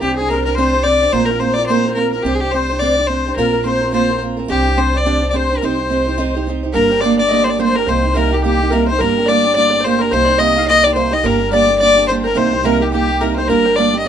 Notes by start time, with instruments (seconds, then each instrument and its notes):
0.00 upright bass C2, steel-string acoustic guitar C4 D4 G4 C5, accordion G4, fiddle G4
0.16 steel-string acoustic guitar G4 C5, fiddle G#4, accordion G#4
0.21 steel-string acoustic guitar D4
0.29 steel-string acoustic guitar C4 D4 G4, fiddle A#4, accordion A#4
0.33 steel-string acoustic guitar C5
0.45 steel-string acoustic guitar D4 G4 C5, fiddle A#4, accordion A#4
0.55 steel-string acoustic guitar C4 D4, fiddle C5, accordion C5
0.59 steel-string acoustic guitar G4 C5
0.73 steel-string acoustic guitar D4 G4 C5
0.83 steel-string acoustic guitar C4 D4 G4 C5, fiddle D5, accordion D5
1.01 steel-string acoustic guitar D4 G4 C5, accordion D5
1.12 upright bass A#1, steel-string acoustic guitar A#3 C4 F4 A#4, fiddle C5, accordion C5
1.25 fiddle A#4, steel-string acoustic guitar A#4
1.30 steel-string acoustic guitar C4 F4, accordion A#4
1.39 steel-string acoustic guitar A#3 C4 F4 A#4, fiddle C5, accordion C5
1.54 steel-string acoustic guitar A#4, fiddle D5
1.58 steel-string acoustic guitar C4 F4, accordion D5
1.67 steel-string acoustic guitar A#3 C4, fiddle C5, accordion C5
1.71 steel-string acoustic guitar F4 A#4
1.86 steel-string acoustic guitar C4 F4 A#4
1.95 steel-string acoustic guitar A#3 C4 F4 A#4, fiddle A#4, accordion A#4
2.12 steel-string acoustic guitar F4 A#4, fiddle A#4, accordion A#4
2.16 steel-string acoustic guitar C4
2.23 upright bass C2, steel-string acoustic guitar C4 D4 G4, fiddle G4
2.27 accordion G4, steel-string acoustic guitar C5
2.35 fiddle G#4
2.40 fiddle G4, steel-string acoustic guitar G4 C5
2.45 steel-string acoustic guitar D4, accordion G4
2.51 steel-string acoustic guitar C4 D4 G4, fiddle C5, accordion C5
2.56 steel-string acoustic guitar C5
2.70 steel-string acoustic guitar D4 G4 C5
2.79 steel-string acoustic guitar C4 D4 G4, fiddle D5, accordion D5
2.83 steel-string acoustic guitar C5
2.96 steel-string acoustic guitar D4 G4 C5
3.07 steel-string acoustic guitar C4 D4, fiddle C5, accordion C5
3.11 steel-string acoustic guitar G4 C5
3.18 accordion C5
3.26 steel-string acoustic guitar D4 G4 C5, accordion C5
3.36 upright bass A#1, steel-string acoustic guitar A#3 C4 F4 A#4, fiddle A#4, accordion A#4
3.53 steel-string acoustic guitar C4 F4 A#4
3.64 steel-string acoustic guitar A#3 C4 F4 A#4, fiddle C5, accordion C5
3.81 steel-string acoustic guitar C4 F4 A#4
3.93 steel-string acoustic guitar A#3 C4 F4 A#4, fiddle C5, accordion C5
4.10 steel-string acoustic guitar C4 F4 A#4
4.22 steel-string acoustic guitar A#3 C4 F4 A#4
4.37 steel-string acoustic guitar C4 F4 A#4
4.48 upright bass C2, steel-string acoustic guitar C4 D4 G4 C5, fiddle G4, accordion G4
4.64 steel-string acoustic guitar G4 C5
4.77 steel-string acoustic guitar C4 D4 G4 C5, fiddle C5, accordion C5
4.93 steel-string acoustic guitar D4 G4 C5, accordion D5, fiddle D5
5.05 steel-string acoustic guitar C4 D4 G4 C5
5.21 steel-string acoustic guitar D4 G4 C5
5.29 steel-string acoustic guitar C4, accordion D5, fiddle D5
5.34 steel-string acoustic guitar D4 G4 C5, accordion C5, fiddle C5
5.49 steel-string acoustic guitar D4 G4 C5
5.58 fiddle A#4, accordion A#4
5.62 upright bass C2, steel-string acoustic guitar C4 D#4 G4 C5, fiddle C5, accordion C5
5.78 steel-string acoustic guitar D#4 G4 C5
5.90 steel-string acoustic guitar C4 D#4 G4 C5
6.07 steel-string acoustic guitar D#4 G4 C5
6.18 steel-string acoustic guitar C4 D#4 G4 C5
6.35 steel-string acoustic guitar D#4 G4 C5
6.47 steel-string acoustic guitar C4 D#4 G4 C5
6.63 steel-string acoustic guitar D#4 G4 C5
6.73 upright bass G1, steel-string acoustic guitar G3 A#3 D4 G4, fiddle A#4, five-string banjo A#4, accordion A#4
6.90 steel-string acoustic guitar A#3 D4 G4, five-string banjo C5
7.00 steel-string acoustic guitar G3, accordion C5 D5, fiddle D5, five-string banjo D5
7.04 steel-string acoustic guitar A#3 D4 G4
7.17 steel-string acoustic guitar A#3 D4 G4, five-string banjo D5, accordion D5, fiddle D5
7.29 steel-string acoustic guitar G3 A#3, accordion D5, five-string banjo D5, fiddle D5 D#5
7.33 steel-string acoustic guitar D4 G4
7.44 steel-string acoustic guitar D4 G4, fiddle C5, five-string banjo D5, accordion D5
7.49 steel-string acoustic guitar A#3, fiddle D5
7.58 steel-string acoustic guitar G3 A#3 D4 G4, five-string banjo C5, accordion C5, fiddle C5
7.75 steel-string acoustic guitar A#3 D4 G4, five-string banjo A#4, accordion A#4, fiddle A#4
7.86 upright bass C2, steel-string acoustic guitar C3 G3 A#3 D#4 G4, five-string banjo C5, accordion C5, fiddle C5
8.02 steel-string acoustic guitar A#3 D#4 G4
8.14 steel-string acoustic guitar C3 G3 A#3 D#4 G4, five-string banjo A#4, accordion A#4, fiddle A#4
8.31 steel-string acoustic guitar A#3 D#4 G4, five-string banjo G4, accordion G4, fiddle G4
8.42 steel-string acoustic guitar G3 A#3 D#4 G4, five-string banjo G4, fiddle G4, accordion G4
8.60 steel-string acoustic guitar A#3 D#4 G4
8.70 steel-string acoustic guitar C3 G3 A#3 D#4 G4, five-string banjo A#4, fiddle A#4
8.75 accordion A#4
8.87 steel-string acoustic guitar G4, five-string banjo C5, fiddle C5, accordion C5
8.92 steel-string acoustic guitar A#3 D#4
8.99 upright bass G1, steel-string acoustic guitar G3 A#3 D4, five-string banjo A#4, accordion A#4, fiddle A#4
9.03 steel-string acoustic guitar G4
9.17 steel-string acoustic guitar A#3 D4 G4
9.26 steel-string acoustic guitar G3 A#3, five-string banjo D5, accordion D5, fiddle D5
9.30 steel-string acoustic guitar D4 G4
9.44 steel-string acoustic guitar A#3 D4 G4
9.54 steel-string acoustic guitar G3 A#3 D4, five-string banjo D5, accordion D5, fiddle D5
9.58 steel-string acoustic guitar G4
9.70 steel-string acoustic guitar D4 G4, five-string banjo D5
9.75 steel-string acoustic guitar A#3
9.80 five-string banjo C5, fiddle C5, accordion C5
9.85 steel-string acoustic guitar G3 A#3 D4 G4
9.99 steel-string acoustic guitar D4 G4, five-string banjo A#4, accordion A#4, fiddle A#4
10.03 steel-string acoustic guitar A#3
10.10 upright bass C2, steel-string acoustic guitar C3 G3 A#3 D#4 G4, accordion C5, five-string banjo C5, fiddle C5
10.25 steel-string acoustic guitar G4, five-string banjo D5
10.29 steel-string acoustic guitar A#3 D#4
10.38 steel-string acoustic guitar C3 G3 A#3 D#4 G4, five-string banjo D#5, accordion D#5, fiddle D#5
10.56 steel-string acoustic guitar A#3 D#4 G4, accordion F5
10.66 steel-string acoustic guitar G3 A#3 D#4, five-string banjo D#5, accordion D#5, fiddle D#5
10.70 steel-string acoustic guitar G4
10.83 steel-string acoustic guitar A#3 D#4 G4, five-string banjo D5, fiddle D5, accordion D5
10.94 steel-string acoustic guitar C3 G3 A#3 D#4 G4, fiddle C5, accordion C5, five-string banjo C5
11.11 steel-string acoustic guitar A#3 D#4 G4, accordion D#5, five-string banjo D#5, fiddle D#5
11.23 upright bass G1, steel-string acoustic guitar G3 A#3 D4 G4, five-string banjo A#4, fiddle A#4, accordion A#4
11.40 steel-string acoustic guitar A#3 D4 G4
11.52 steel-string acoustic guitar G3 A#3 D4 G4, accordion D5, fiddle D5, five-string banjo D5
11.67 steel-string acoustic guitar A#3 D4 G4
11.79 steel-string acoustic guitar G3 A#3 D4 G4, fiddle D5, five-string banjo D5, accordion D5
11.96 steel-string acoustic guitar A#3 D4 G4
12.08 steel-string acoustic guitar G3 A#3 D4 G4, fiddle C5, five-string banjo C5, accordion C5
12.24 steel-string acoustic guitar A#3 D4 G4, five-string banjo A#4, fiddle A#4, accordion A#4
12.35 upright bass C2, steel-string acoustic guitar C3 G3 A#3 D#4 G4, five-string banjo C5, fiddle C5
12.39 accordion C5
12.53 steel-string acoustic guitar A#3 D#4 G4
12.64 steel-string acoustic guitar C3 G3 A#3 D#4 G4, fiddle A#4, accordion A#4, five-string banjo A#4
12.80 steel-string acoustic guitar A#3 D#4 G4, five-string banjo G4, fiddle G4, accordion G4
12.92 steel-string acoustic guitar G3 A#3 D#4 G4, fiddle G4, five-string banjo G4, accordion G4
13.08 steel-string acoustic guitar A#3 D#4 G4
13.21 steel-string acoustic guitar C3 G3 A#3 D#4 G4, five-string banjo A#4, accordion A#4, fiddle A#4
13.36 steel-string acoustic guitar A#3 D#4 G4, fiddle C5, accordion C5, five-string banjo C5
13.47 upright bass G1, steel-string acoustic guitar G3 A#3 D4, fiddle A#4, five-string banjo A#4, accordion A#4
13.51 steel-string acoustic guitar G4
13.65 steel-string acoustic guitar A#3 D4 G4, five-string banjo C5
13.76 steel-string acoustic guitar G3 A#3, fiddle D5, accordion D5, five-string banjo D5
13.80 steel-string acoustic guitar D4 G4
13.94 steel-string acoustic guitar A#3 D4 G4
13.99 fiddle D#5
14.04 steel-string acoustic guitar G3